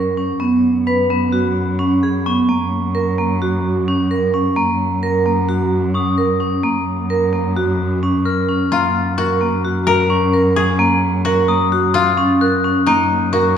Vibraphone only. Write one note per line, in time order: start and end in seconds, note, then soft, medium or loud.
0.00 0.14 A#4 medium
0.17 0.37 C#4 medium
0.40 0.80 B3 medium
0.87 1.07 B4 medium
1.10 1.30 B3 medium
1.33 1.73 F#4 medium
1.79 1.99 C#4 medium
2.03 2.23 G#4 medium
2.26 2.46 B3 medium
2.49 2.89 A#3 medium
2.95 3.15 A#4 medium
3.18 3.38 A#3 medium
3.42 3.81 F#4 medium
3.88 4.08 C#4 medium
4.11 4.31 A#4 medium
4.34 4.54 C#4 medium
4.56 4.96 A#3 medium
5.03 5.23 A#4 medium
5.26 5.46 A#3 medium
5.49 5.89 F#4 medium
5.95 6.15 C#4 medium
6.18 6.38 A#4 medium
6.40 6.61 C#4 medium
6.64 7.04 A#3 medium
7.10 7.30 A#4 medium
7.33 7.53 A#3 medium
7.56 7.96 F#4 medium
8.03 8.23 C#4 medium
8.25 8.45 A#4 medium
8.49 8.69 C#4 medium
8.72 9.12 A#3 medium
9.18 9.38 A#4 medium
9.41 9.61 A#3 medium
9.65 10.04 F#4 medium
10.10 10.30 C#4 medium
10.34 10.53 A#4 medium
10.56 10.76 C#4 medium
10.79 11.19 A#3 medium
11.26 11.45 A#4 medium
11.49 11.68 A#3 medium
11.72 12.12 F#4 medium
12.18 12.38 C#4 medium
12.41 12.61 A#4 medium
12.64 12.84 C#4 medium
12.87 13.27 A#3 medium
13.33 13.53 A#4 medium